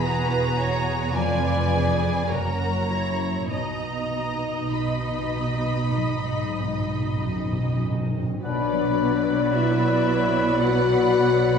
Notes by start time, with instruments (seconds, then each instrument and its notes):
Already playing: double bass section E1, cello section E2, harp E3 E4, violin section G#4
0.03 violin section F#4 A#5, viola section B4, harp B4
0.58 harp G#4, viola section C#5
1.14 double bass section F1, harp F2, cello section F2, violin section F4 B4 G#5, viola section D5
1.72 harp D4 G#4, violin section G#4
2.29 double bass section F#1, harp F#2, cello section F#2, violin section F#4 C#5 A#5, viola section A#4
2.89 violin section E4, harp E4 F#4, viola section C#5
3.50 double bass section B1, cello section B2, harp B2, timpani B2, violin section D#4 D#5 A#5, viola section D#5
3.59 timpani B2
3.75 timpani B2
3.82 timpani B2
3.91 timpani B2
4.07 timpani B2
4.11 harp B3
4.23 timpani B2
4.30 timpani B2
4.38 timpani B2
4.55 timpani B2
4.63 timpani B2
4.73 cello section B2, harp F#4, violin section B5
4.79 timpani B2
4.89 timpani B2
4.95 timpani B2
5.03 timpani B2
5.11 timpani B2
5.20 timpani B2
5.28 timpani B2
5.34 timpani B2, harp D#4
5.44 timpani B2
5.52 timpani B2
5.60 timpani B2
5.67 timpani B2
5.75 timpani B2
5.83 timpani B2
5.92 timpani B2
5.96 cello section G#2, timpani B2, harp F#3
6.07 timpani B2
6.15 timpani B2
6.23 timpani B2
6.32 timpani B2
6.39 timpani B2
6.48 timpani B2
6.56 timpani B2, harp B3
6.64 timpani B2
6.74 timpani B2
6.81 timpani B2
6.90 timpani B2
6.98 timpani B2
7.05 timpani B2
7.13 timpani B2
7.21 cello section F#2, timpani B2, harp F#4
7.29 timpani B2
7.36 timpani B2
7.45 timpani B2
7.53 timpani B2
7.60 timpani B2
7.69 timpani B2
7.76 timpani B2
7.84 timpani B2, harp D#4
7.92 timpani B2
8.00 timpani B2
8.08 timpani B2
8.16 timpani B2
8.24 timpani B2
8.31 timpani B2
8.43 double bass section B1, cello section B2, harp B2, viola section F#3 B4, french horn section D4, violin section D5 B5, clarinet D5, oboe F#5, flute section B5
8.72 harp F#3
9.00 harp B3
9.28 harp D4
9.54 french horn section E4, harp F#4, violin section E5
9.83 harp B4
10.10 harp D5
10.37 harp F#5
10.63 french horn section F#4, harp D5, violin section F#5
11.18 harp D5
11.45 harp F#5